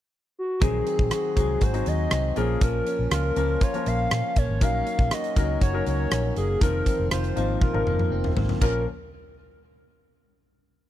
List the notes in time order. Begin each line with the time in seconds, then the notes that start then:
0.39 F#4
0.61 A#1 D#3 F#3 C4 D#4 G#4, kick, closed hi-hat
0.87 C4, closed hi-hat
0.99 A#1, kick
1.11 F#4 G#4, cross-stick, closed hi-hat
1.36 C2 F#3 G#3 C4 D#4 G#4, kick, closed hi-hat
1.61 G#1 F#4 C5, kick, closed hi-hat
1.74 F#3 C4 D#4 G#4, closed hi-hat
1.86 D#2 G#3 D#5, closed hi-hat
2.11 C2 C4, cross-stick, closed hi-hat
2.36 A#1 F3 A#3 C#4 G#4 A#4, closed hi-hat
2.61 A#1 F3 A#4, kick, closed hi-hat
2.87 C#4, closed hi-hat
2.99 A#1
3.11 C#2 F4 A#4, cross-stick, closed hi-hat
3.36 C#2 F3 A#3 C#4 A#4, closed hi-hat
3.61 F4 C#5, kick, closed hi-hat
3.74 F3 A#3 C#4 A#4, closed hi-hat
3.86 A#1 A#3 F5, closed hi-hat
4.11 A#2 C#4, cross-stick, closed hi-hat
4.36 A#1 A#3 C#5, kick, closed hi-hat
4.49 G#1
4.61 A#1 F#3 A#3 C#4 D#4 A#4 F5, kick, closed hi-hat
4.87 C#4, closed hi-hat
4.99 A#1, kick
5.11 F#4 D#5, cross-stick, closed hi-hat
5.24 closed hi-hat
5.36 C#2 F#3 A#3 C#4 D#4 A#4, kick, closed hi-hat
5.61 F#1 F#4 C#5, kick, closed hi-hat
5.73 F#3 C#4 D#4 A#4
5.87 C#2 A#3 C#5, closed hi-hat
6.11 A#1 C#4, cross-stick, closed hi-hat
6.36 F#1 A#3 G#4, closed hi-hat
6.61 F1 D#3 F3 C4 D#4 A#4, kick, closed hi-hat
6.86 C4, kick, closed hi-hat
6.99 F1
7.11 F1 F4 C5, cross-stick, closed hi-hat
7.24 closed hi-hat
7.36 G#1 F3 A#3 C4 D#4 F4, closed hi-hat
7.61 F4 A#4, kick, high tom
7.73 G#1 F3 C4 D#4 A#4, high tom
7.86 F1 A#3, mid tom
7.99 F2, mid tom
8.11 F1 C4
8.24 mid tom
8.37 G#1 A#3, floor tom
8.49 floor tom
8.61 A#1 F3 A#3 C#4 F4 A#4, kick, crash